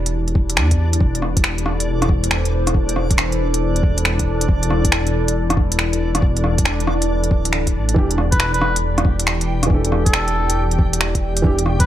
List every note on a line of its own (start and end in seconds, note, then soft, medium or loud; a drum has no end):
0.00 0.58 E1 medium
0.00 11.86 E3 medium
0.00 7.98 D4 medium
0.00 11.86 E4 medium
0.00 2.12 G4 medium
0.00 1.01 D5 medium
0.00 7.98 D5 medium
0.06 closed hi-hat medium
0.28 closed hi-hat soft
0.35 kick loud
0.50 closed hi-hat medium
0.57 0.99 E2 medium
0.57 finger snap loud
0.71 kick medium
0.71 closed hi-hat soft
0.93 closed hi-hat medium
1.00 2.73 E1 medium
1.00 kick loud
1.15 closed hi-hat soft
1.22 8.76 A4 medium
1.22 cross-stick soft
1.37 kick medium
1.37 closed hi-hat medium
1.44 finger snap loud
1.58 closed hi-hat soft
1.66 cross-stick soft
1.71 4.70 C5 medium
1.80 closed hi-hat medium
2.02 cross-stick medium
2.02 closed hi-hat soft
2.09 kick loud
2.24 closed hi-hat medium
2.31 finger snap loud
2.45 closed hi-hat soft
2.67 cross-stick soft
2.67 closed hi-hat medium
2.74 3.82 E1 loud
2.74 kick loud
2.89 closed hi-hat soft
2.96 cross-stick soft
3.10 kick medium
3.10 closed hi-hat medium
3.18 finger snap loud
3.32 closed hi-hat soft
3.54 closed hi-hat medium
3.76 closed hi-hat soft
3.83 4.47 E1 loud
3.83 kick loud
3.98 closed hi-hat soft
4.05 finger snap medium
4.19 kick medium
4.19 closed hi-hat soft
4.41 closed hi-hat medium
4.48 6.21 E1 loud
4.48 kick loud
4.59 11.86 D5 medium
4.63 closed hi-hat soft
4.70 cross-stick soft
4.85 kick medium
4.85 closed hi-hat medium
4.92 finger snap loud
5.07 closed hi-hat soft
5.28 closed hi-hat medium
5.50 cross-stick medium
5.50 closed hi-hat soft
5.57 kick medium
5.72 closed hi-hat medium
5.79 finger snap loud
5.93 closed hi-hat soft
6.15 cross-stick medium
6.15 closed hi-hat medium
6.22 7.32 E1 loud
6.22 kick loud
6.37 closed hi-hat soft
6.44 cross-stick soft
6.58 kick medium
6.58 closed hi-hat medium
6.65 finger snap loud
6.80 closed hi-hat soft
6.87 cross-stick medium
7.02 closed hi-hat medium
7.24 closed hi-hat soft
7.31 7.76 D1 medium
7.31 kick medium
7.45 closed hi-hat medium
7.53 finger snap medium
7.67 kick medium
7.67 closed hi-hat soft
7.74 7.95 A1 medium
7.89 closed hi-hat medium
7.94 9.69 E1 loud
7.94 8.05 E3 medium
7.94 8.06 D4 medium
7.94 11.86 G4 medium
7.94 11.86 G5 medium
7.94 kick loud
7.98 8.07 G4 loud
8.11 closed hi-hat soft
8.18 cross-stick soft
8.32 8.51 B4 medium
8.32 kick loud
8.32 closed hi-hat medium
8.40 finger snap loud
8.54 8.76 B4 medium
8.54 closed hi-hat soft
8.61 cross-stick medium
8.76 11.86 G4 medium
8.76 closed hi-hat medium
8.98 cross-stick medium
8.98 closed hi-hat soft
9.05 kick loud
9.20 closed hi-hat medium
9.27 finger snap loud
9.41 closed hi-hat soft
9.63 11.40 E3 medium
9.63 cross-stick medium
9.63 closed hi-hat medium
9.70 10.78 E1 loud
9.70 11.42 D4 medium
9.70 kick loud
9.74 11.44 A4 medium
9.85 closed hi-hat soft
9.92 cross-stick soft
10.06 10.65 A4 medium
10.06 kick loud
10.06 closed hi-hat medium
10.13 finger snap loud
10.28 closed hi-hat soft
10.50 closed hi-hat medium
10.71 closed hi-hat soft
10.79 11.43 E1 loud
10.79 kick loud
10.93 closed hi-hat medium
11.01 finger snap loud
11.15 kick medium
11.15 closed hi-hat soft
11.37 closed hi-hat medium
11.42 11.86 E1 loud
11.42 11.53 E3 medium
11.42 11.54 D4 medium
11.42 kick loud
11.46 11.55 G4 loud
11.59 closed hi-hat soft
11.66 cross-stick soft
11.80 11.86 B4 medium
11.80 kick loud
11.80 closed hi-hat medium